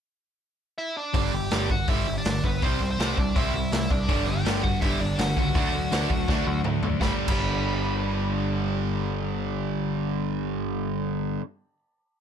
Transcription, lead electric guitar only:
0.78 0.95 E4 medium
0.78 0.97 E5 medium
0.97 1.31 D4 medium
0.97 1.34 D5 medium
1.34 1.68 G4 medium
1.34 1.68 G5 medium
1.71 1.87 F#4 medium
1.71 1.88 F#5 medium
1.89 2.14 E4 medium
1.89 2.14 E5 loud
2.17 2.42 D4 medium
2.17 2.44 D5 medium
2.45 2.61 B3 medium
2.45 2.63 B4 medium
2.62 2.88 C4 medium
2.62 2.88 C5 medium
2.90 3.16 C4 medium
2.90 3.19 C5 medium
3.18 3.35 D4 medium
3.18 3.37 D5 medium
3.37 3.71 E4 medium
3.37 3.72 E5 loud
3.72 3.89 E4 medium
3.72 3.91 E5 medium
3.90 4.24 D4 medium
3.90 4.28 D5 medium
4.27 4.61 G4 medium
4.27 4.62 G5 loud
4.63 4.80 F#4 medium
4.63 4.80 F#5 medium
4.81 4.99 E4 medium
4.81 5.01 E5 loud
5.01 5.17 D4 medium
5.01 5.19 D5 medium
5.19 5.36 F#4 medium
5.19 5.37 F#5 medium
5.37 6.61 F#4 medium
5.37 6.61 F#5 medium
7.02 7.11 B5 medium
7.29 10.68 B5 medium

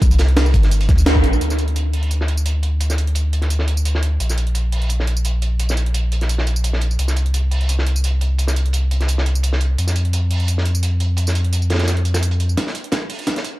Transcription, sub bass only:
0.02 0.55 C2 loud
0.54 0.88 G1 medium
0.89 1.22 D2 loud
1.24 1.39 A#1 medium
1.41 4.19 D2 medium
4.20 6.98 A#1 medium
6.99 9.77 C2 medium
9.78 12.56 F2 medium

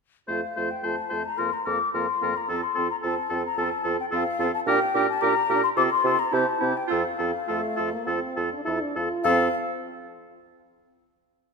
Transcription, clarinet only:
0.29 0.41 F4 soft
0.57 0.69 F4 soft
0.83 0.96 F4 soft
1.10 1.23 F4 soft
1.38 1.50 F4 soft
1.67 1.79 F4 soft
1.94 2.07 F4 soft
2.21 2.34 F4 soft
2.49 2.62 F4 soft
2.77 2.89 F4 soft
3.05 3.17 F4 soft
3.32 3.44 F4 soft
3.59 3.71 F4 soft
3.85 3.98 F4 soft
4.12 4.24 F4 medium
4.39 4.52 F4 medium
4.68 4.80 G4 medium
4.94 5.07 G4 medium
5.21 5.34 G4 medium
5.49 5.62 G4 medium
5.76 5.89 F4 medium
6.04 6.17 F4 medium
6.32 6.45 E4 medium
6.60 6.73 E4 medium
6.88 7.01 F4 medium
7.18 7.31 F4 soft
7.47 7.61 F4 medium
7.77 7.90 F4 soft
8.07 8.20 F4 soft
8.36 8.49 F4 soft
8.66 8.79 F4 soft
8.96 9.09 F4 soft
9.26 9.49 F4 medium

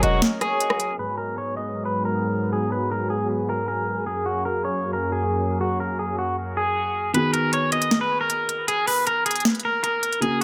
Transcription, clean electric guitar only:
0.03 0.20 F#4 medium
0.41 0.96 G#4 medium
0.99 1.16 B4 medium
1.17 1.35 A#4 medium
1.38 1.55 C#5 medium
1.57 1.84 D#5 medium
1.85 2.02 B4 medium
2.05 2.50 A#4 medium
2.53 2.70 G#4 loud
2.72 2.89 B4 medium
2.91 3.08 A#4 loud
3.10 3.27 G#4 medium
3.49 3.66 A#4 medium
3.68 4.04 A#4 medium
4.07 4.23 G#4 loud
4.26 4.43 F#4 medium
4.45 4.62 A#4 medium
4.65 4.92 C#5 medium
4.93 5.10 A#4 medium
5.12 5.58 G#4 medium
5.61 5.78 F#4 medium
5.80 5.97 A#4 medium
5.99 6.16 G#4 medium
6.19 6.35 F#4 medium
6.57 7.11 G#4 medium
7.15 7.31 B4 medium
7.33 7.50 A#4 medium
7.54 7.70 C#5 medium
7.72 7.99 D#5 medium
8.01 8.18 B4 medium
8.21 8.66 A#4 medium
8.68 8.85 G#4 loud
8.88 9.04 B4 medium
9.07 9.24 A#4 loud
9.26 9.43 G#4 medium
9.65 9.82 A#4 medium
9.84 10.20 A#4 medium
10.22 10.39 G#4 loud

